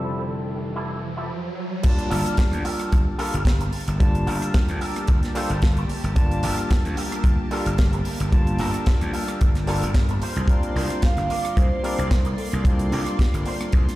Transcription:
Already playing: slap bass F1, tine electric piano F3 G3 C4 E4 A4, clean electric guitar E4 G4 C5, analog synth pad G4 E5 A5, riser
0.76 clean electric guitar E4 G4 A4
1.17 clean electric guitar E4 G4 A4
1.83 tine electric piano G3 A#3 D4 F4 A5, analog synth pad A#3 G4 A5, kick, closed hi-hat, crash
1.98 closed hi-hat
2.10 slap bass G1, clean electric guitar F4 G4 A4 A#4, open hi-hat
2.25 cross-stick, closed hi-hat
2.37 kick, snare, closed hi-hat
2.52 slap bass D2, cross-stick, closed hi-hat
2.64 clean electric guitar F4 G4 A4 A#4, open hi-hat
2.79 cross-stick, closed hi-hat
2.92 slap bass G1, kick, closed hi-hat
3.18 tine electric piano G3 A#3 D4 F4 A4, clean electric guitar F4 G4 A4 A#4, open hi-hat
3.34 slap bass G1, closed hi-hat
3.45 kick, snare, closed hi-hat
3.60 muted clean electric guitar stroke, closed hi-hat
3.73 muted clean electric guitar stroke, open hi-hat
3.88 slap bass G1, closed hi-hat
3.99 tine electric piano G3 A#3 D4 F4 A5, kick, closed hi-hat
4.15 closed hi-hat
4.27 slap bass G1, clean electric guitar F4 G4 A4 A#4, open hi-hat
4.42 cross-stick, closed hi-hat
4.54 kick, snare, closed hi-hat
4.68 slap bass D2, cross-stick, closed hi-hat
4.81 clean electric guitar F4 G4 A4 A#4, open hi-hat
4.96 cross-stick, closed hi-hat
5.07 slap bass G1, kick, closed hi-hat
5.23 snare, closed hi-hat
5.35 tine electric piano G3 A#3 D4 F4 A4, clean electric guitar F4 G4 A4 C5, open hi-hat
5.50 slap bass G1, closed hi-hat
5.62 kick, snare, closed hi-hat
5.77 muted clean electric guitar stroke, closed hi-hat
5.89 muted clean electric guitar stroke, muted slap bass stroke, open hi-hat
6.04 slap bass G1, closed hi-hat
6.15 tine electric piano G3 A#3 D4 F4 A5, kick, closed hi-hat
6.31 closed hi-hat
6.43 slap bass G1, clean electric guitar F4 G4 A4 A#4, open hi-hat
6.58 cross-stick, closed hi-hat
6.70 kick, snare, closed hi-hat
6.85 slap bass D2, cross-stick, closed hi-hat
6.97 clean electric guitar F4 G4 A4 A#4, open hi-hat
7.12 cross-stick, closed hi-hat
7.24 slap bass G1, kick, closed hi-hat
7.51 tine electric piano G3 A#3 D4 F4 A4, clean electric guitar F4 G4 A4 A#4, open hi-hat
7.66 slap bass G1, closed hi-hat
7.78 kick, snare, closed hi-hat
7.93 muted clean electric guitar stroke, closed hi-hat
8.05 muted clean electric guitar stroke, open hi-hat
8.20 slap bass G1, closed hi-hat
8.32 tine electric piano G3 A#3 D4 F4 A5, kick, closed hi-hat
8.47 closed hi-hat
8.59 slap bass G1, clean electric guitar F4 G4 A4 A#4, open hi-hat
8.74 cross-stick, closed hi-hat
8.86 kick, snare, closed hi-hat
9.01 slap bass D2, cross-stick, closed hi-hat
9.13 clean electric guitar F4 G4 A4 A#4, open hi-hat
9.28 cross-stick, closed hi-hat
9.41 slap bass G1, kick, closed hi-hat
9.55 snare, closed hi-hat
9.67 tine electric piano G3 A#3 D4 F4 A4, clean electric guitar F4 G4 A4 A#4, open hi-hat
9.82 slap bass G1, closed hi-hat
9.94 kick, snare, closed hi-hat
10.09 muted clean electric guitar stroke, closed hi-hat
10.21 clean electric guitar D4 F4 A#4 C5, analog synth pad D5 C6, muted slap bass stroke, open hi-hat
10.36 slap bass C2, closed hi-hat
10.48 tine electric piano G3 C4 D4 F4 A#4, kick, closed hi-hat
10.63 closed hi-hat
10.76 slap bass C2, clean electric guitar D4 F4 A#4 C5, open hi-hat
10.90 cross-stick, closed hi-hat
11.02 vibraphone F5, kick, snare, closed hi-hat
11.17 slap bass G1, cross-stick, closed hi-hat
11.29 clean electric guitar D4 F4 A#4 D5, open hi-hat
11.45 cross-stick, closed hi-hat
11.56 slap bass C2, vibraphone C5, kick, closed hi-hat
11.83 tine electric piano G3 C4 D4 F4 A#4, clean electric guitar D4 F4 A#4 D5, open hi-hat
11.99 slap bass C2, closed hi-hat
12.10 vibraphone A#4, kick, snare, closed hi-hat
12.25 muted clean electric guitar stroke, closed hi-hat
12.37 vibraphone A4, muted clean electric guitar stroke, open hi-hat
12.52 slap bass C2, closed hi-hat
12.64 tine electric piano G3 A#3 C4 D4 F4, kick, closed hi-hat
12.79 closed hi-hat
12.92 slap bass C2, clean electric guitar D4 F4 A#4 D5, open hi-hat
13.06 cross-stick, closed hi-hat
13.19 kick, snare, closed hi-hat
13.34 slap bass G1, cross-stick, closed hi-hat
13.46 clean electric guitar D4 F4 A#4 C5, open hi-hat
13.61 cross-stick, closed hi-hat
13.72 slap bass C2, kick, closed hi-hat
13.88 snare, closed hi-hat

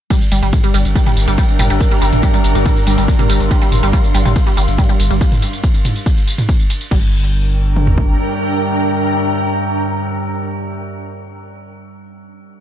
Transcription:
0.10 synth drone G2 G3, synth arpeggio sound G3, ambient pad D4, kick, closed hi-hat, ride, tambourine
0.20 ambient pad A#4, closed hi-hat, tambourine
0.32 sub bass G1, synth arpeggio sound G3, open hi-hat, tambourine
0.43 sub bass G1, synth arpeggio sound G3, closed hi-hat, tambourine
0.48 ambient pad G5 A#5
0.53 kick, closed hi-hat, mid tom, ride, tambourine
0.64 synth arpeggio sound G3, closed hi-hat, tambourine
0.74 sub bass G1, synth arpeggio sound G3, open hi-hat, tambourine
0.85 sub bass G1, closed hi-hat, tambourine
0.95 synth arpeggio sound G3, kick, closed hi-hat, ride, tambourine
1.06 synth arpeggio sound G3, closed hi-hat, mid tom, tambourine
1.17 sub bass G1, open hi-hat, tambourine
1.28 sub bass G1, synth arpeggio sound G3, closed hi-hat, tambourine
1.38 synth arpeggio sound G3, kick, closed hi-hat, ride, tambourine
1.43 closed hi-hat
1.49 closed hi-hat, tambourine
1.59 sub bass G1, synth arpeggio sound G3, mid tom, open hi-hat, tambourine
1.70 sub bass G1, synth arpeggio sound G3, closed hi-hat, tambourine
1.80 kick, closed hi-hat, ride, tambourine
1.91 synth arpeggio sound G3, closed hi-hat, tambourine
2.02 sub bass G1, synth arpeggio sound G3, open hi-hat, tambourine
2.13 sub bass G1, closed hi-hat, mid tom, tambourine
2.23 synth arpeggio sound G3, kick, closed hi-hat, ride, tambourine
2.34 synth arpeggio sound G3, closed hi-hat, tambourine
2.44 sub bass G1, open hi-hat, tambourine
2.55 sub bass G1, synth arpeggio sound G3, closed hi-hat, tambourine
2.63 synth arpeggio sound G3, ambient pad C6, kick, closed hi-hat, mid tom, ride, tambourine
2.77 closed hi-hat, tambourine
2.87 sub bass G1, synth arpeggio sound G3, ambient pad F5, open hi-hat, tambourine
2.98 sub bass G1, synth arpeggio sound G3, closed hi-hat, tambourine
3.08 kick, closed hi-hat, ride, tambourine
3.14 closed hi-hat
3.19 synth arpeggio sound G3, closed hi-hat, mid tom, tambourine
3.29 sub bass G1, synth arpeggio sound G3, open hi-hat, tambourine
3.40 sub bass G1, closed hi-hat, tambourine
3.51 synth arpeggio sound G3, kick, closed hi-hat, ride, tambourine
3.62 synth arpeggio sound G3, closed hi-hat, tambourine
3.72 sub bass G1, mid tom, open hi-hat, tambourine
3.83 sub bass G1, synth arpeggio sound G3, closed hi-hat, tambourine
3.93 synth arpeggio sound G3, kick, closed hi-hat, ride, tambourine
4.04 closed hi-hat, tambourine
4.15 sub bass G1, synth arpeggio sound G3, open hi-hat, tambourine
4.25 sub bass G1, synth arpeggio sound G3, closed hi-hat, mid tom, tambourine
4.36 kick, closed hi-hat, ride, tambourine
4.47 synth arpeggio sound G3, closed hi-hat, tambourine
4.57 sub bass G1, synth arpeggio sound G3, open hi-hat, tambourine
4.68 sub bass G1, closed hi-hat, tambourine
4.78 synth arpeggio sound G3, kick, closed hi-hat, mid tom, ride, tambourine
4.84 closed hi-hat
4.89 synth arpeggio sound G3, closed hi-hat, tambourine
5.00 sub bass G1, open hi-hat, tambourine
5.11 sub bass G1, synth arpeggio sound G3, closed hi-hat, tambourine
5.21 kick, closed hi-hat, ride, tambourine
5.32 closed hi-hat, mid tom, tambourine
5.42 open hi-hat, tambourine
5.53 closed hi-hat, tambourine
5.64 kick, closed hi-hat, ride, tambourine
5.75 closed hi-hat, tambourine
5.85 mid tom, open hi-hat, tambourine
5.96 closed hi-hat, tambourine
6.06 kick, closed hi-hat, ride, tambourine
6.17 closed hi-hat, tambourine
6.27 open hi-hat, tambourine
6.38 closed hi-hat, mid tom, tambourine
6.49 kick, closed hi-hat, ride, tambourine
6.54 closed hi-hat
6.60 closed hi-hat, tambourine
6.70 open hi-hat, tambourine
6.81 closed hi-hat, tambourine
6.91 sub bass G1, synth drone G2 G3, synth arpeggio sound G3, ambient pad D4, kick, crash
6.98 ambient pad A#4
7.05 ambient pad G5
7.11 ambient pad A#5
7.76 mid tom
7.87 floor tom
7.98 kick

